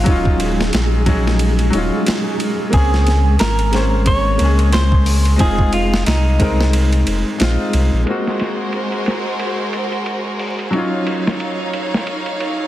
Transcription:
0.00 1.02 F#3 medium
0.00 8.08 G#3 medium
0.00 1.03 F4 medium
0.00 8.08 G#4 medium
0.06 0.70 D#1 loud
0.06 1.03 C#4 medium
0.06 1.04 D#4 medium
0.06 kick loud
0.06 ride medium
0.11 1.05 F4 loud
0.25 kick medium
0.40 ride medium
0.61 snare medium
0.73 1.71 A#1 medium
0.73 snare loud
0.73 ride medium
1.06 1.69 F#3 medium
1.06 1.70 C#4 medium
1.06 1.71 D#4 medium
1.06 1.71 G#4 medium
1.06 kick medium
1.06 ride medium
1.27 snare soft
1.39 ride medium
1.59 ride soft
1.70 1.90 D#1 medium
1.70 2.69 F#3 medium
1.70 2.70 C#4 medium
1.70 ride medium
1.75 2.71 D#4 medium
1.75 2.72 F4 medium
2.06 snare loud
2.06 ride medium
2.40 ride medium
2.70 3.37 C#2 loud
2.70 3.68 A#3 medium
2.70 3.70 C4 medium
2.70 3.36 G#4 loud
2.70 kick loud
2.70 ride medium
2.75 3.71 C#4 medium
2.75 3.72 G#4 medium
2.94 snare soft
3.07 snare soft
3.07 ride medium
3.39 4.38 G#1 medium
3.39 4.07 A#4 loud
3.39 snare loud
3.39 ride medium
3.59 ride soft
3.72 4.36 A#3 medium
3.72 4.37 C4 medium
3.72 4.37 C#4 medium
3.72 4.38 C5 medium
3.72 snare soft
3.72 ride medium
4.06 4.73 C#5 loud
4.06 kick loud
4.06 ride medium
4.38 5.37 C#2 medium
4.38 5.35 G#3 medium
4.38 5.36 A#3 medium
4.38 ride medium
4.42 5.38 C#4 medium
4.42 5.39 G#4 medium
4.59 ride soft
4.73 5.36 C5 loud
4.73 snare loud
4.73 ride medium
4.92 kick loud
5.06 open hi-hat medium
5.25 ride soft
5.36 6.04 F1 loud
5.36 6.35 G#3 medium
5.36 6.36 C4 medium
5.36 kick loud
5.36 ride medium
5.40 6.37 D#4 medium
5.40 6.38 F4 loud
5.40 5.71 G#4 loud
5.59 kick medium
5.73 6.05 F4 medium
5.73 ride medium
5.94 snare medium
6.06 7.04 C2 medium
6.06 7.69 D#4 medium
6.06 snare loud
6.06 ride medium
6.38 7.03 G#3 medium
6.38 7.03 C4 medium
6.38 7.04 D#4 medium
6.38 7.04 A#4 medium
6.38 kick medium
6.38 ride medium
6.61 snare soft
6.73 ride medium
6.93 ride soft
7.07 7.24 F1 medium
7.07 ride medium
7.38 7.57 A#1 loud
7.38 8.02 G#3 medium
7.38 8.03 C4 medium
7.38 8.04 D#4 medium
7.38 8.04 F4 medium
7.38 snare loud
7.38 ride medium
7.73 7.90 C2 medium
7.73 ride medium
7.93 8.05 A#1 medium
8.03 10.68 G#3 medium
8.03 10.71 G#3 medium
8.03 10.70 A#3 medium
8.03 10.71 F#4 medium
8.03 10.71 A#4 medium
8.03 10.71 C5 medium
8.03 ride medium
8.08 10.71 C4 medium
8.08 10.72 F#4 medium
8.27 snare soft
8.39 snare soft
8.39 ride medium
8.73 ride medium
8.92 ride soft
9.06 snare soft
9.06 ride medium
9.39 ride medium
9.73 ride medium
9.92 ride soft
10.06 ride medium
10.39 open hi-hat medium
10.59 ride soft
10.71 12.67 F#3 medium
10.71 12.67 C#4 medium
10.71 12.67 D#4 medium
10.71 12.67 C#5 medium
10.71 12.67 F5 medium
10.71 ride medium
10.75 12.67 D#4 medium
10.75 12.67 F4 medium
11.07 ride medium
11.27 snare medium
11.40 ride medium
11.73 ride medium
11.94 snare soft
12.07 ride medium
12.26 ride soft
12.40 ride medium

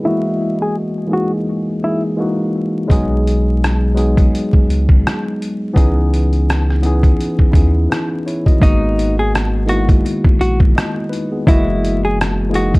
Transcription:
0.00 1.01 E3 medium
0.00 0.23 B3 soft
0.00 0.23 G#4 medium
0.04 1.01 G#3 medium
0.04 1.02 A#3 medium
0.04 0.57 E4 medium
0.04 1.03 F#4 loud
0.04 1.02 D#5 medium
0.62 0.75 G#4 medium
1.07 1.74 E3 medium
1.07 1.74 G#3 medium
1.07 1.75 A#3 medium
1.07 1.75 D#4 medium
1.11 1.31 F#4 medium
1.11 1.76 G#4 medium
1.83 2.15 E3 medium
1.83 2.16 G#3 soft
1.83 2.17 A#3 medium
1.83 2.18 D#4 medium
1.83 2.02 E4 medium
1.83 2.20 G#4 medium
2.16 2.82 E3 medium
2.16 2.82 G#3 medium
2.16 2.83 A#3 medium
2.16 2.83 D#4 medium
2.20 2.84 F#4 medium
2.87 4.29 B1 loud
2.87 3.86 F#3 loud
2.87 3.86 G#3 loud
2.87 3.87 B3 medium
2.87 3.87 D#4 medium
2.87 kick loud
2.87 closed hi-hat medium
2.92 3.88 G#4 loud
3.27 closed hi-hat medium
3.64 cross-stick medium
3.64 closed hi-hat medium
3.94 5.25 F#3 medium
3.94 5.25 G#3 medium
3.94 5.26 B3 medium
3.94 5.26 D#4 medium
3.94 closed hi-hat medium
3.99 5.27 G#4 medium
4.17 kick medium
4.17 closed hi-hat soft
4.35 closed hi-hat medium
4.53 4.60 C#2 soft
4.53 kick medium
4.69 5.03 C#2 medium
4.69 closed hi-hat medium
4.89 kick medium
5.07 cross-stick loud
5.07 closed hi-hat medium
5.42 closed hi-hat medium
5.73 7.15 C#2 loud
5.73 6.71 E3 loud
5.73 6.72 B3 loud
5.73 6.73 C#4 loud
5.73 6.73 D#4 loud
5.73 kick loud
5.77 6.73 G#4 loud
5.77 closed hi-hat medium
6.14 closed hi-hat medium
6.33 closed hi-hat soft
6.50 cross-stick loud
6.50 closed hi-hat medium
6.70 cross-stick soft
6.82 7.47 E3 medium
6.82 7.47 B3 medium
6.82 7.48 C#4 medium
6.82 7.48 D#4 medium
6.82 closed hi-hat medium
6.86 7.49 G#4 loud
7.03 kick medium
7.03 closed hi-hat soft
7.21 closed hi-hat medium
7.39 7.45 D#2 soft
7.39 kick medium
7.52 7.88 D#2 medium
7.52 8.50 B3 medium
7.52 8.51 C#4 medium
7.52 7.89 D#4 medium
7.52 8.26 E4 medium
7.52 kick loud
7.52 closed hi-hat medium
7.56 7.91 G#4 medium
7.90 8.24 D#4 soft
7.90 8.24 B4 medium
7.90 cross-stick loud
7.90 closed hi-hat medium
8.26 8.46 E4 medium
8.26 8.45 C#5 medium
8.26 closed hi-hat medium
8.46 8.62 F#4 medium
8.46 8.80 D#5 medium
8.46 kick medium
8.46 closed hi-hat soft
8.59 10.00 G#1 loud
8.59 9.57 D#3 medium
8.59 9.57 G#3 medium
8.59 9.58 A#3 medium
8.59 9.58 B3 medium
8.59 9.15 D#4 loud
8.59 kick loud
8.63 9.59 F#4 loud
8.63 closed hi-hat medium
8.99 closed hi-hat medium
9.19 9.32 G#4 medium
9.35 cross-stick loud
9.35 closed hi-hat medium
9.66 10.96 D#3 medium
9.66 10.97 G#3 medium
9.66 10.75 A#3 medium
9.66 10.76 B3 medium
9.66 9.87 F#4 medium
9.66 closed hi-hat medium
9.70 9.77 E4 medium
9.77 10.76 F#4 medium
9.89 kick medium
9.89 closed hi-hat soft
10.06 closed hi-hat medium
10.24 10.31 A#1 soft
10.24 kick loud
10.41 10.74 A#1 medium
10.41 10.59 F#4 medium
10.41 closed hi-hat medium
10.60 kick medium
10.76 11.10 F#4 soft
10.76 11.10 D#5 medium
10.76 cross-stick loud
10.76 closed hi-hat medium
11.09 11.30 D#4 medium
11.09 11.30 B4 medium
11.09 closed hi-hat medium
11.32 11.66 B3 medium
11.32 11.66 G#4 medium
11.46 12.79 F#1 loud
11.46 12.43 E3 medium
11.46 12.44 G#3 loud
11.46 12.45 A#3 medium
11.46 12.01 E4 loud
11.46 12.45 F#4 loud
11.46 12.45 D#5 medium
11.46 kick loud
11.46 closed hi-hat medium
11.85 closed hi-hat medium
12.05 12.18 G#4 medium
12.21 cross-stick loud
12.21 closed hi-hat medium
12.49 12.79 E3 medium
12.49 12.79 G#3 medium
12.49 12.79 A#3 medium
12.49 12.79 D#4 medium
12.53 12.73 F#4 medium
12.53 12.79 G#4 medium
12.53 closed hi-hat medium
12.74 kick loud
12.74 closed hi-hat soft

